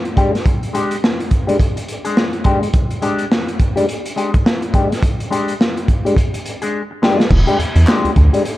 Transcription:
0.05 closed hi-hat
0.16 clean electric guitar G#3 D4 G4, kick, closed hi-hat
0.33 muted clean electric guitar stroke, snare, closed hi-hat
0.46 kick, closed hi-hat
0.63 closed hi-hat
0.73 clean electric guitar G#3 D4 G4, closed hi-hat
0.91 closed hi-hat
1.02 muted clean electric guitar stroke, snare
1.19 muted clean electric guitar stroke, closed hi-hat
1.31 kick, closed hi-hat
1.47 clean electric guitar G#3 D4 G4, closed hi-hat
1.59 kick, closed hi-hat
1.76 muted clean electric guitar stroke, closed hi-hat
1.88 closed hi-hat
2.05 clean electric guitar G#3 D4 G#4, closed hi-hat
2.17 snare
2.33 muted clean electric guitar stroke, closed hi-hat
2.44 clean electric guitar G#3 D4 G4, kick, closed hi-hat
2.62 muted clean electric guitar stroke, closed hi-hat
2.73 kick, closed hi-hat
2.90 closed hi-hat
3.02 clean electric guitar G#3 D4 G4, closed hi-hat
3.19 closed hi-hat
3.30 muted clean electric guitar stroke, snare
3.47 muted clean electric guitar stroke, closed hi-hat
3.59 kick, closed hi-hat
3.76 clean electric guitar G#3 D4 G4, closed hi-hat
3.88 muted clean electric guitar stroke, closed hi-hat
4.06 closed hi-hat
4.16 clean electric guitar G#3 D4 G4, closed hi-hat
4.33 muted clean electric guitar stroke, kick, closed hi-hat
4.44 muted clean electric guitar stroke, snare
4.62 closed hi-hat
4.73 clean electric guitar G#3 D4 G4, kick, closed hi-hat
4.90 muted clean electric guitar stroke, snare, closed hi-hat
5.03 kick, closed hi-hat
5.20 closed hi-hat
5.31 clean electric guitar G#3 D4 G4, closed hi-hat
5.48 closed hi-hat
5.59 muted clean electric guitar stroke, snare
5.77 muted clean electric guitar stroke, closed hi-hat
5.88 kick, closed hi-hat
6.05 clean electric guitar G#3 D4 G4, closed hi-hat
6.16 kick, closed hi-hat
6.34 muted clean electric guitar stroke, closed hi-hat
6.46 closed hi-hat
6.62 clean electric guitar G#3 D4 G#4, closed hi-hat
6.91 muted clean electric guitar stroke
7.02 clean electric guitar G#3 D4 G4, snare
7.19 muted clean electric guitar stroke, snare
7.30 analog synth bass E1, muted clean electric guitar stroke, kick, crash
7.47 clean electric guitar G#3 D4 G4, closed hi-hat
7.59 analog synth bass E2, muted clean electric guitar stroke, closed hi-hat
7.76 analog synth bass E2, muted clean electric guitar stroke, closed hi-hat
7.87 clean electric guitar G#3 D4 G4, snare, clap
8.04 analog synth bass D2, closed hi-hat
8.16 analog synth bass D2, muted clean electric guitar stroke, kick, closed hi-hat
8.33 clean electric guitar G#3 D4 G4, closed hi-hat
8.45 muted clean electric guitar stroke, closed hi-hat

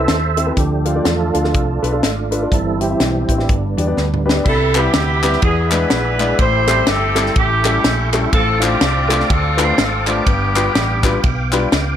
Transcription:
Already playing: tonewheel organ A4 C5 E5
0.00 grand piano C4 E4 A4 B4
0.08 fingered electric bass D#2, snare, closed hi-hat
0.37 grand piano C4 E4 A4 E5, closed hi-hat
0.46 grand piano C4 E4 A4 B4
0.56 fingered electric bass D2, grand piano D3, tonewheel organ F3 A3 D4 G4, kick, closed hi-hat
0.85 grand piano D4 F4 A4 F5, closed hi-hat
0.95 grand piano D4 F4 A4 D5
1.04 fingered electric bass E2, tonewheel organ D4 F4 A4, snare, closed hi-hat
1.34 fingered electric bass D2, grand piano D4 F4 A4 F5, closed hi-hat
1.44 grand piano D4 F4 A4 F5, snare
1.53 fingered electric bass C2, tonewheel organ F3 A3 D4 F4 A4, kick, closed hi-hat
1.82 fingered electric bass B1, grand piano D4 F4 A4 B4, closed hi-hat
1.92 grand piano D4 F4 A4 F5
2.03 fingered electric bass G#1, tonewheel organ A3 D4 F4, snare, closed hi-hat
2.31 grand piano D4 F4 A4 B4, closed hi-hat
2.42 grand piano D4 F4 A4 D5
2.51 fingered electric bass G1, grand piano G2, tonewheel organ E3 G3 C4 E4 A4, kick, closed hi-hat
2.80 grand piano C4 E4 G4 E5, tonewheel organ C4 E4 G4, closed hi-hat
2.90 grand piano C4 E4 G4 E5
3.00 fingered electric bass B1, snare, closed hi-hat
3.28 fingered electric bass A1, tonewheel organ G3 B3 D4, grand piano C4 E4 G4 G5, kick, closed hi-hat
3.38 grand piano C4 E4 G4 E5, snare
3.48 fingered electric bass G1, grand piano G2, tonewheel organ D3 G3 B3, kick, closed hi-hat
3.77 fingered electric bass E2, grand piano B3 D4 G4 D5, closed hi-hat
3.87 grand piano B3 D4 G4 D5
3.97 fingered electric bass D2, snare
4.14 mid tom
4.26 grand piano B3 D4 G4 B4, snare
4.36 grand piano B3 D4 G4 D5
4.44 fingered electric bass C2, grand piano C3, saxophone section E4 A4, tonewheel organ G4 B4 E5 B5, kick, crash
4.74 grand piano G3 C4 E4 B4, saxophone section B3 E4 G4, clap, ride bell
4.93 fingered electric bass D2, snare, ride bell
5.23 grand piano G3 C4 E4 B4, snare, clap, ride bell
5.33 snare
5.42 fingered electric bass E2, grand piano E3, saxophone section B3 D4 G#4, tonewheel organ G#4 D5, kick, ride bell
5.71 grand piano G#3 D4 E4 B4, saxophone section D4 G#4 B4, clap, ride bell
5.90 fingered electric bass A#1, snare, ride bell
6.18 grand piano G#3 D4 E4 D5, clap, ride bell
6.38 fingered electric bass A1, grand piano A2, saxophone section E4 G4 C5, tonewheel organ A4 G5 C6, kick, ride bell
6.67 grand piano G3 C4 E4 A4, clap, ride bell
6.87 fingered electric bass G1, saxophone section C4 E4 A4, snare, ride bell
7.15 grand piano G3 C4 E4 A4, snare, clap, ride bell
7.26 snare
7.34 fingered electric bass A1, grand piano A2, saxophone section C#4 E4 G4, tonewheel organ E5 C#6, kick, ride bell
7.65 grand piano G3 C#4 E4 A4, saxophone section C#4 E4 G4, clap, ride bell
7.84 fingered electric bass A#1, snare, ride bell
8.13 grand piano G3 C#4 E4 A4, clap, ride bell
8.32 fingered electric bass A1, grand piano A2, saxophone section C4 F4 A4, tonewheel organ C5 F5 A5 D6, kick, ride bell
8.60 grand piano A3 D4 F4 C5, saxophone section C4 D4 G4, clap, ride bell
8.81 fingered electric bass C2, snare, ride bell
9.09 grand piano A3 D4 F4 A4, clap, ride bell
9.20 snare
9.29 fingered electric bass D2, saxophone section C4 F4 A4, kick, ride bell
9.57 grand piano A3 D4 F4 B4, saxophone section C5, clap, ride bell
9.78 fingered electric bass G#1, saxophone section A4, snare, ride bell
10.07 grand piano A3 D4 F4 C5, saxophone section B3 D4 G4, clap, ride bell
10.26 fingered electric bass G1, grand piano G2, tonewheel organ B3 G5, kick, ride bell
10.55 grand piano G3 D4 F4 B4, clap, ride bell
10.75 fingered electric bass A1, snare, ride bell
11.03 grand piano G3 D4 F4 B4, kick, snare, clap, ride bell
11.23 fingered electric bass B1, kick, ride bell
11.53 grand piano G3 D4 F4 B4, clap, ride bell
11.72 fingered electric bass C#2, snare, ride bell

